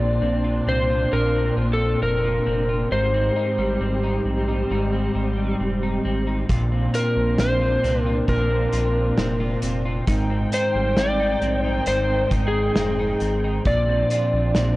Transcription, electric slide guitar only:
0.00 0.68 D5 medium
0.69 1.14 C5 medium
1.13 1.54 A#4 medium
1.73 2.02 A4 medium
2.03 2.87 A#4 medium
2.92 5.56 C5 medium
6.95 7.40 A#4 medium
7.40 8.01 C5 medium
8.01 8.25 A#4 medium
8.29 9.59 A#4 medium
10.54 10.99 C5 medium
10.99 11.64 D5 medium
11.64 11.88 C5 medium
11.88 12.29 C5 medium
12.48 13.70 G#4 medium
13.67 14.76 D5 medium

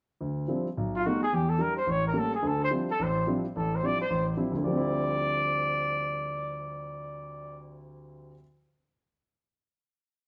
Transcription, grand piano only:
0.21 0.45 D2 medium
0.48 0.66 F3 soft
0.48 0.67 G3 soft
0.48 0.67 C4 soft
0.48 0.67 D4 soft
0.48 0.67 E4 soft
0.77 1.01 B1 medium
1.06 1.23 G3 soft
1.06 1.23 A3 soft
1.06 1.23 B3 soft
1.06 1.23 D#4 soft
1.33 1.56 E2 medium
1.59 1.77 G3 soft
1.59 1.77 D4 soft
1.59 1.77 E4 soft
1.87 2.11 A1 medium
2.13 2.32 G3 soft
2.13 2.32 A3 soft
2.13 2.33 A#3 soft
2.13 2.33 C#4 medium
2.43 2.66 D2 medium
2.43 2.66 D3 medium
2.71 2.89 F3 soft
2.71 2.88 G3 soft
2.71 2.89 C4 soft
2.71 2.89 D4 soft
2.71 2.89 E4 soft
2.99 3.22 A1 medium
3.27 3.44 F3 soft
3.27 3.44 G3 soft
3.27 3.44 C4 soft
3.27 3.45 D4 soft
3.27 3.45 E4 medium
3.56 3.78 A1 medium
3.83 4.00 F3 soft
3.83 4.00 G3 soft
3.83 4.00 C4 soft
3.83 4.00 D4 soft
3.83 4.00 E4 soft
4.10 4.33 A1 medium
4.37 4.54 F3 soft
4.37 4.55 G3 soft
4.37 4.54 C4 soft
4.37 4.55 D4 soft
4.37 4.55 E4 medium
4.51 8.29 D2 medium
4.57 8.32 D3 soft
4.62 8.34 F3 medium
4.67 8.37 G3 medium
4.72 8.39 C4 medium
4.77 8.42 E4 medium

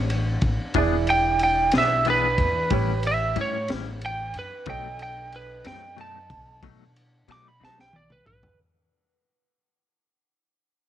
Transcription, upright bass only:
0.00 0.39 A1 medium
0.42 0.57 A1 medium
0.75 1.69 E1 medium
1.74 2.35 B1 medium
2.38 2.68 E2 medium
2.71 3.32 A1 medium
3.36 3.66 A2 medium
3.70 4.31 A1 loud
4.35 4.50 F#2 medium
4.66 5.61 B1 loud
5.65 6.27 F#2 medium
6.30 6.60 B1 medium
6.63 7.24 B2 medium
7.28 7.58 B2 medium
7.61 8.23 B1 medium
8.26 8.42 B1 medium

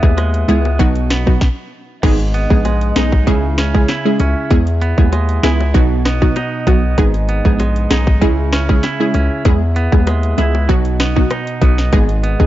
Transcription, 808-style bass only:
0.03 0.45 D#2 loud
0.48 0.81 C#2 loud
0.79 1.37 B1 loud
2.03 2.47 G#1 loud
2.50 2.92 A#1 loud
2.96 3.29 B1 medium
3.27 3.85 C#2 loud
4.20 4.35 C#2 medium
4.51 4.94 E2 loud
4.98 5.40 D#2 loud
5.43 5.76 C#2 loud
5.74 6.32 B1 loud
6.67 6.95 B1 loud
6.98 7.41 G#1 loud
7.45 7.87 A#1 loud
7.91 8.23 B1 medium
8.22 8.79 C#2 loud
9.14 9.29 C#2 medium
9.45 9.89 E2 loud
9.92 10.34 D#2 loud
10.38 10.70 C#2 loud
10.69 11.27 B1 loud
11.62 11.90 B1 medium
11.93 12.36 G#1 loud
12.40 12.47 A#1 loud

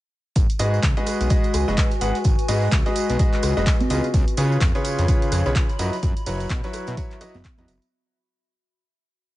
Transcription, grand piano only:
0.59 0.79 G#3 medium
0.59 0.79 F#4 medium
0.59 0.79 G#4 medium
0.59 0.79 B4 medium
0.59 0.79 D#5 medium
0.97 1.28 G#3 medium
0.97 1.28 F#4 medium
0.97 1.28 G#4 medium
0.97 1.28 B4 medium
0.97 1.28 D#5 medium
1.30 1.65 G#3 medium
1.30 1.65 F#4 medium
1.30 1.65 G#4 medium
1.30 1.65 B4 medium
1.30 1.65 D#5 loud
1.68 1.86 G#3 medium
1.68 1.86 F#4 medium
1.68 1.86 G#4 medium
1.68 1.86 B4 medium
1.68 1.86 D#5 medium
2.01 2.15 G#3 medium
2.01 2.15 F#4 medium
2.01 2.15 G#4 medium
2.01 2.15 B4 medium
2.01 2.15 F#5 medium
2.48 2.68 G#3 medium
2.48 2.68 F#4 medium
2.48 2.68 G#4 medium
2.48 2.68 B4 medium
2.48 2.68 D#5 medium
2.86 3.17 G#3 medium
2.86 3.17 F#4 medium
2.86 3.17 G#4 medium
2.86 3.17 B4 medium
2.86 3.17 D#5 loud
3.19 3.54 G#3 medium
3.19 3.54 F#4 medium
3.19 3.54 G#4 medium
3.19 3.54 B4 medium
3.19 3.54 D#5 loud
3.57 3.75 G#3 medium
3.57 3.75 F#4 medium
3.57 3.75 G#4 medium
3.57 3.75 B4 medium
3.57 3.75 D#5 medium
3.90 4.04 C#3 medium
3.90 4.04 F4 medium
3.90 4.04 G#4 medium
3.90 4.04 B4 medium
3.90 4.04 D#5 medium
4.37 4.57 C#3 medium
4.37 4.57 F4 medium
4.37 4.57 G#4 medium
4.37 4.57 B4 medium
4.37 4.57 C#5 medium
4.75 5.06 C#3 medium
4.75 5.06 F4 medium
4.75 5.06 G#4 medium
4.75 5.06 B4 medium
4.75 5.06 C#5 loud
5.08 5.43 C#3 medium
5.08 5.43 F4 medium
5.08 5.43 G#4 medium
5.08 5.43 B4 medium
5.08 5.43 C#5 loud
5.46 5.64 C#3 medium
5.46 5.64 F4 medium
5.46 5.64 G#4 medium
5.46 5.64 B4 medium
5.46 5.64 C#5 medium
5.79 5.93 F#3 medium
5.79 5.93 E4 medium
5.79 5.93 F#4 medium
5.79 5.93 B4 medium
5.79 5.93 D#5 medium
6.26 6.46 F#3 medium
6.26 6.46 E4 medium
6.26 6.46 F#4 medium
6.26 6.46 B4 medium
6.26 6.46 C#5 loud
6.64 6.95 F#3 medium
6.64 6.95 E4 medium
6.64 6.95 F#4 medium
6.64 6.95 B4 medium
6.64 6.95 C#5 loud
6.97 7.19 F#3 medium
6.97 7.19 E4 medium
6.97 7.19 F#4 medium
6.97 7.19 B4 medium
6.97 7.19 C#5 loud
7.21 7.35 F#3 medium
7.21 7.35 E4 medium
7.21 7.35 F#4 medium
7.21 7.35 B4 medium
7.21 7.35 D#5 loud
7.58 7.68 F#3 medium
7.58 7.68 E4 medium
7.58 7.68 F#4 medium
7.58 7.68 B4 medium
7.58 7.68 D#5 medium

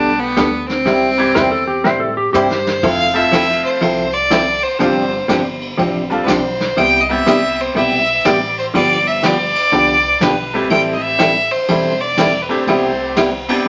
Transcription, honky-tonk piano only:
0.00 0.33 G3 medium
0.00 0.34 A3 medium
0.00 0.34 B3 medium
0.00 0.34 D4 medium
0.00 0.34 G4 medium
1.18 1.33 E3 medium
1.18 1.33 G3 medium
1.18 1.34 C4 medium
1.18 1.34 E4 medium
1.18 1.34 G4 medium
3.14 3.77 F3 medium
3.14 3.78 A3 medium
3.14 3.78 C4 medium
3.14 3.78 E4 medium
3.14 3.79 F4 medium
4.79 5.09 G3 medium
4.79 5.09 C4 medium
4.79 5.09 D4 medium
4.79 5.10 F4 medium
4.79 5.10 G4 medium
6.10 6.26 G3 medium
6.10 6.26 C4 medium
6.10 6.26 D4 medium
6.10 6.27 F4 medium
6.10 6.27 A4 medium
7.09 7.72 G3 medium
7.09 7.72 B3 medium
7.09 7.73 C4 medium
7.09 7.73 E4 medium
7.09 7.73 G4 medium
10.54 11.16 G3 medium
10.54 11.17 A3 medium
10.54 11.17 C4 medium
10.54 11.17 E4 medium
10.54 11.17 G4 medium
12.49 13.12 A3 medium
12.49 13.13 C4 medium
12.49 13.13 D4 medium
12.49 13.13 E4 medium
12.49 13.13 G4 medium
13.49 13.68 B3 medium
13.49 13.68 C4 medium
13.49 13.68 D4 medium
13.49 13.68 E4 medium
13.49 13.68 G4 medium

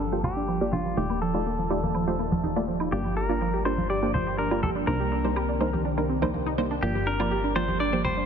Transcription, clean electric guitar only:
0.00 0.24 A4 loud
0.24 0.74 G4 medium
0.73 0.98 F4 medium
0.97 1.20 G4 medium
1.22 2.64 A4 medium
2.92 3.16 G4 medium
3.17 3.65 A#4 loud
3.65 3.89 C5 loud
3.90 4.14 D5 loud
4.14 4.38 C5 medium
4.38 4.63 A#4 medium
4.63 4.70 A4 medium
4.87 5.81 A#4 medium
6.83 7.08 G4 medium
7.07 7.55 A#4 loud
7.56 7.80 C5 loud
7.80 8.03 D5 loud
8.05 8.26 C5 medium

